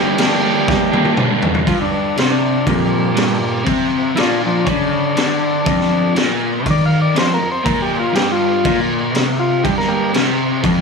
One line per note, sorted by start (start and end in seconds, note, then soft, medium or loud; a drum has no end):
0.00 0.18 G2 loud
0.00 0.17 D3 loud
0.00 0.18 G3 medium
0.00 0.19 A#3 medium
0.00 0.20 D4 medium
0.00 1.13 G4 medium
0.18 0.68 D3 medium
0.18 0.45 G3 medium
0.18 0.43 A#3 medium
0.18 0.41 D4 medium
0.18 snare loud
0.18 crash medium
0.42 0.94 G3 medium
0.42 0.93 A#3 medium
0.42 0.91 D4 medium
0.68 kick loud
0.68 snare medium
0.92 1.18 G3 medium
0.92 1.19 A#3 medium
0.92 1.19 D4 medium
0.92 high tom medium
1.05 high tom medium
1.17 1.65 G2 medium
1.17 1.66 D3 medium
1.17 1.67 G3 medium
1.17 1.67 A#3 medium
1.17 1.67 D4 loud
1.17 mid tom loud
1.42 floor tom loud
1.55 floor tom loud
1.66 2.16 G2 loud
1.66 1.79 F4 medium
1.66 kick loud
1.66 crash medium
1.81 1.92 D4 medium
1.94 2.17 D4 medium
2.16 2.66 C3 loud
2.16 2.30 C4 medium
2.16 snare loud
2.16 crash medium
2.30 2.66 D4 medium
2.66 3.14 F2 loud
2.66 3.63 A#2 medium
2.66 3.65 G3 loud
2.66 kick loud
2.66 crash medium
3.15 3.39 G2 loud
3.15 snare loud
3.15 crash medium
3.40 3.61 G2 medium
3.65 4.15 C3 loud
3.65 kick loud
3.65 crash medium
4.16 4.65 A#2 loud
4.16 4.41 D4 medium
4.16 4.18 E4 medium
4.16 snare loud
4.16 crash medium
4.20 4.43 F4 loud
4.46 4.67 F3 medium
4.46 4.68 D4 medium
4.65 5.15 C#3 loud
4.65 4.68 C#4 medium
4.65 kick loud
4.65 crash medium
4.70 6.14 D4 loud
5.16 5.66 D3 medium
5.16 snare loud
5.16 crash medium
5.64 6.15 F2 loud
5.64 kick loud
5.64 crash medium
5.81 snare soft
6.15 6.65 A#2 loud
6.15 snare loud
6.15 crash medium
6.65 7.15 D#3 loud
6.65 kick loud
6.65 crash medium
6.70 6.84 D5 loud
6.86 7.00 F5 loud
7.02 7.17 D5 loud
7.15 7.38 F2 loud
7.15 7.33 C5 loud
7.15 snare loud
7.15 crash medium
7.34 7.49 A#4 medium
7.39 7.60 F2 medium
7.52 7.67 C5 medium
7.64 8.14 A#2 loud
7.64 7.82 A#4 medium
7.64 kick loud
7.64 crash medium
7.82 7.98 G4 medium
8.00 8.15 F4 medium
8.13 8.63 G2 loud
8.13 8.32 G4 loud
8.13 snare loud
8.13 crash medium
8.32 8.80 F4 loud
8.64 9.14 A#2 loud
8.64 kick loud
8.64 crash medium
9.14 9.63 C3 loud
9.14 snare loud
9.14 crash medium
9.39 9.64 F4 medium
9.64 10.13 G2 loud
9.64 9.76 G4 medium
9.64 kick loud
9.64 crash medium
9.78 9.89 A#4 medium
9.78 snare soft
9.88 10.12 A#3 medium
9.88 10.13 G4 loud
10.14 10.63 C3 loud
10.14 snare loud
10.14 crash medium
10.63 10.81 F2 loud
10.63 kick loud
10.63 crash medium